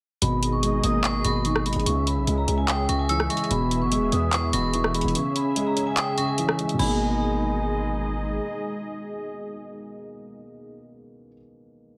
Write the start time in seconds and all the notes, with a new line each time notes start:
0.22 G#1 B2 G#3 D#4 G#4 D#5 B5, closed hi-hat
0.43 closed hi-hat
0.53 C#6
0.63 G#3, closed hi-hat
0.84 G#1 A#3 D#6, closed hi-hat
1.04 C#6 D#6, clap, closed hi-hat
1.25 G#1 B2 B5 C#6, closed hi-hat
1.45 D#3 C#6, closed hi-hat
1.56 cross-stick
1.66 G#3 B5, closed hi-hat
1.73 G#1, closed hi-hat
1.80 closed hi-hat
1.86 C#2 C#3 C#4 G#4 E5 C#6, closed hi-hat
2.07 B5, closed hi-hat
2.17 B1
2.27 C#2 G#3, closed hi-hat
2.38 A#5
2.48 C#2 C#4, closed hi-hat
2.58 G#5
2.68 G5 D#6, clap, closed hi-hat
2.89 C#2 C#3 C#6, closed hi-hat
2.99 G#5
3.09 E3 E6, closed hi-hat
3.20 cross-stick
3.30 G#3 C#6, closed hi-hat, open hi-hat
3.37 closed hi-hat
3.44 closed hi-hat
3.50 E1 B2 E3 B3 B5, closed hi-hat
3.71 closed hi-hat
3.81 G1 C#6
3.92 G#3, closed hi-hat
3.97 E1
4.12 E2 B3 D#6, closed hi-hat
4.33 C#6 D#6, clap, closed hi-hat
4.53 E1 B2 B5 C#6, closed hi-hat
4.74 E3 C#6, closed hi-hat
4.84 cross-stick
4.94 G#3 B5, closed hi-hat
5.01 E1, closed hi-hat
5.08 closed hi-hat
5.15 C#3 C#4 G#4 E5 C#6, closed hi-hat
5.36 B5, closed hi-hat
5.56 G#3, closed hi-hat
5.67 A#5
5.77 C#4, closed hi-hat
5.87 G#5
5.97 G5 D#6, clap, closed hi-hat
6.18 C#3 C#6, closed hi-hat
6.28 G#5
6.38 E3, closed hi-hat
6.49 cross-stick
6.59 G#3, closed hi-hat, open hi-hat
6.69 closed hi-hat
6.74 B2
6.78 G#1 D#3 G#3 D#4 G#4 D#5 G#5 B5, crash
6.82 G#3 A#3